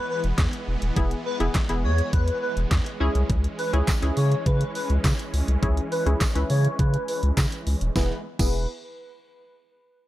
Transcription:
Already playing: supersaw synth E3 G#3 B3
0.09 digital synth lead B4
0.24 sub bass E1, closed hi-hat
0.38 sub bass E2, kick, snare, clap, closed hi-hat
0.53 closed hi-hat
0.68 sub bass E1
0.82 sub bass D#1, closed hi-hat
0.96 sub bass E1, synth stab B3 E4 G#4, kick, closed hi-hat
1.11 closed hi-hat
1.26 digital synth lead B4
1.40 sub bass E1, synth stab B3 E4 G#4, closed hi-hat
1.54 kick, snare, clap, closed hi-hat
1.69 sub bass E1, synth stab B3 E4 G#4, closed hi-hat
1.84 sub bass E2, digital synth lead C#5
1.98 closed hi-hat
2.13 sub bass E2, digital synth lead B4, kick, closed hi-hat
2.28 closed hi-hat
2.42 digital synth lead B4
2.57 sub bass E1, closed hi-hat
2.71 sub bass E2, kick, snare, clap, closed hi-hat
2.86 closed hi-hat
3.00 sub bass C#2, supersaw synth E3 C#4, synth stab C#4 E4 G#4
3.15 sub bass C2, closed hi-hat
3.30 sub bass C#2, kick, closed hi-hat
3.44 closed hi-hat
3.59 digital synth lead B4, open hi-hat
3.73 sub bass C#2, synth stab C#4 E4 G#4, closed hi-hat
3.87 kick, snare, clap, closed hi-hat, tambourine
4.02 sub bass C#2, synth stab C#4 E4 G#4, closed hi-hat
4.17 sub bass C#3, digital synth lead C#5, open hi-hat
4.32 closed hi-hat
4.46 sub bass C#3, digital synth lead B4, kick, closed hi-hat
4.61 closed hi-hat
4.75 digital synth lead B4, open hi-hat
4.90 sub bass C#2, closed hi-hat
5.04 sub bass C#3, kick, snare, clap, closed hi-hat, tambourine
5.19 closed hi-hat
5.33 sub bass C#2, open hi-hat
5.48 sub bass C2, closed hi-hat
5.62 sub bass C#2, synth stab C#4 E4 G#4, kick, closed hi-hat
5.77 closed hi-hat
5.92 digital synth lead B4, open hi-hat
6.06 sub bass C#2, synth stab C#4 E4 G#4, closed hi-hat
6.20 kick, snare, clap, closed hi-hat, tambourine
6.35 sub bass C#2, synth stab C#4 E4 B4, closed hi-hat
6.50 sub bass C#3, digital synth lead C#5, open hi-hat
6.65 closed hi-hat
6.79 sub bass C#3, digital synth lead B4, kick, closed hi-hat
6.94 closed hi-hat
7.08 digital synth lead B4, open hi-hat
7.23 sub bass C#2, closed hi-hat
7.37 sub bass C#3, kick, snare, clap, closed hi-hat, tambourine
7.52 closed hi-hat
7.67 sub bass C#2, open hi-hat
7.81 sub bass D#1, closed hi-hat
7.96 sub bass E1, supersaw synth E3 G#3 B3, synth stab B3 E4 G#4, digital synth lead B4, kick, snare, tambourine
8.39 sub bass E1, synth stab B3 E4 G#4, digital synth lead B4, kick, crash, tambourine

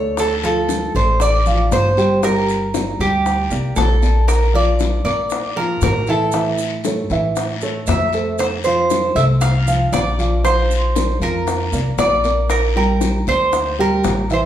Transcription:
Already playing: upright bass D2, grand piano A3 A4 D5, cuban tres C#5
0.17 cuban tres A4, high bongo, long guiro, maracas
0.43 grand piano F3 F4 F5, cuban tres A4, high bongo, maracas
0.68 high bongo, short guiro, maracas
0.95 upright bass A1, grand piano A3 A4 D5, cuban tres C5, high bongo, short guiro, maracas
1.20 cuban tres D5, high bongo, long guiro, maracas
1.46 grand piano F3 F4 F5, high bongo, maracas
1.71 upright bass G1, cuban tres C5, high bongo, low bongo, short guiro, maracas
1.97 grand piano G3 G4 G5, short guiro, maracas
2.23 grand piano G3 G4 G5, cuban tres A#4, high bongo, long guiro, maracas
2.49 high bongo, maracas
2.74 grand piano A#3 A#4 D5, high bongo, short guiro, maracas
2.99 upright bass D2, grand piano G3 G4 G5, cuban tres G4, high bongo, short guiro, maracas
3.26 high bongo, long guiro, maracas
3.50 upright bass C2, grand piano A#3 A#4 D5, high bongo, maracas
3.76 upright bass A#1, cuban tres A4, high bongo, low bongo, short guiro, maracas
4.02 grand piano A#3 A#4 D5, short guiro, maracas
4.28 cuban tres A#4, high bongo, long guiro, maracas
4.54 grand piano F3 F4 F5, cuban tres D5, high bongo
4.79 high bongo, short guiro, maracas
5.05 upright bass A#2, grand piano A#3 A#4 D5, cuban tres D5, high bongo, short guiro, maracas
5.30 high bongo, long guiro, maracas
5.56 grand piano F3 F4 F5, cuban tres A#4, high bongo
5.81 upright bass A2, cuban tres A#4, high bongo, low bongo, short guiro, maracas
6.07 grand piano E3 E4 E5, cuban tres A4, short guiro, maracas
6.32 grand piano E3 E4 E5, high bongo, long guiro, maracas
6.58 high bongo, maracas
6.84 grand piano A3 A4 C#5, high bongo, short guiro, maracas
7.10 upright bass A2, grand piano E3 E4 E5, high bongo, short guiro, maracas
7.35 high bongo, long guiro, maracas
7.61 grand piano A3 A4 C#5, high bongo, maracas
7.87 upright bass F2, cuban tres E5, high bongo, low bongo, short guiro, maracas
8.13 grand piano A3 A4 C5, short guiro, maracas
8.38 cuban tres C5, high bongo, long guiro, maracas
8.64 grand piano F3 F4 F5, cuban tres C5, high bongo, maracas
8.90 high bongo, short guiro, maracas
9.15 upright bass C2, grand piano A3 A4 C5, cuban tres E5, high bongo, short guiro, maracas
9.41 cuban tres F5, high bongo, long guiro, maracas
9.67 grand piano F3 F4 F5, high bongo, maracas
9.92 upright bass A#1, cuban tres D5, high bongo, low bongo, short guiro, maracas
10.18 grand piano F3 F4 F5, short guiro, maracas
10.44 grand piano F3 F4 F5, cuban tres C5, high bongo, long guiro, maracas
10.70 high bongo, maracas
10.95 grand piano A#3 A#4 D5, high bongo, short guiro, maracas
11.20 upright bass F2, grand piano F3 F4 F5, cuban tres A#4, high bongo, short guiro, maracas
11.47 high bongo, long guiro, maracas
11.72 upright bass C2, grand piano A#3 A#4 D5, high bongo, maracas
11.98 upright bass A#1, cuban tres D5, high bongo, low bongo, short guiro, maracas
12.24 grand piano A#3 A#4 D5, short guiro, maracas
12.50 cuban tres A#4, high bongo, long guiro, maracas
12.76 grand piano G3 G4 G5, cuban tres A#4, high bongo
13.01 high bongo, short guiro, maracas
13.27 upright bass D2, grand piano A#3 A#4 D5, cuban tres C5, high bongo, short guiro, maracas
13.52 high bongo, long guiro, maracas
13.79 grand piano G3 G4 G5, cuban tres A#4, high bongo
14.04 upright bass A1, high bongo, low bongo, short guiro, maracas
14.30 grand piano E3 E4 E5, cuban tres C5, short guiro, maracas

